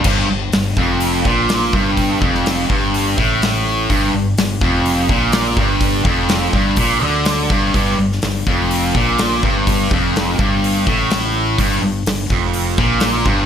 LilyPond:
<<
  \new Staff \with { instrumentName = "Distorted electric guitar" } { \clef bass \time 4/4 \key g \minor \tempo 4 = 125 g,8 g,8 g,8 f,4 bes,4 g,8~ | g,8 f,4 g,4 a,4. | g,8 g,8 g,8 f,4 bes,4 g,8~ | g,8 f,4 g,8 bes,8 d4 g,8 |
g,8 g,8 g,8 f,4 bes,4 g,8~ | g,8 f,4 g,4 a,4. | g,8 g,8 g,8 f,4 bes,4 g,8 | }
  \new Staff \with { instrumentName = "Distorted electric guitar" } { \clef bass \time 4/4 \key g \minor g,8 g,8 g,8 f,4 bes,4 g,8~ | g,8 f,4 g,4 a,4. | g,8 g,8 g,8 f,4 bes,4 g,8~ | g,8 f,4 g,8 bes,8 d4 g,8 |
g,8 g,8 g,8 f,4 bes,4 g,8~ | g,8 f,4 g,4 a,4. | g,8 g,8 g,8 f,4 bes,4 g,8 | }
  \new Staff \with { instrumentName = "Fingered electric bass" } { \clef bass \time 4/4 \key g \minor g,,8 g,,8 g,,8 f,,4 bes,,4 g,,8~ | g,,8 f,,4 g,,4 a,,4. | g,,8 g,,8 g,,8 f,,4 bes,,4 g,,8~ | g,,8 f,,4 g,,8 bes,,8 d,4 g,,8 |
g,,8 g,,8 g,,8 f,,4 bes,,4 g,,8~ | g,,8 f,,4 g,,4 a,,4. | g,,8 g,,8 g,,8 f,,4 bes,,4 g,,8 | }
  \new DrumStaff \with { instrumentName = "Drums" } \drummode { \time 4/4 <cymc bd>4 <hho sn>8 bd8 hho8 bd8 <hho sn>8 bd8 | <hho bd>8 bd16 sn16 <hho sn>8 bd8 hho8 bd8 <hho sn>4 | <hho bd>4 <hho sn>8 bd8 hho8 bd8 <hho sn>8 bd8 | <hho bd>8 bd8 <hho sn>8 bd8 <hho bd>4 <hho sn>8 bd8 |
<hho bd>8. sn16 <hho sn>8 bd8 hho8 bd8 <hho sn>8 bd8 | <hho bd>8 bd8 <hho sn>8 bd8 hho8 bd8 <hho sn>4 | <hho bd>4 <hho sn>8 bd8 hho8 bd8 <hho sn>8 bd8 | }
>>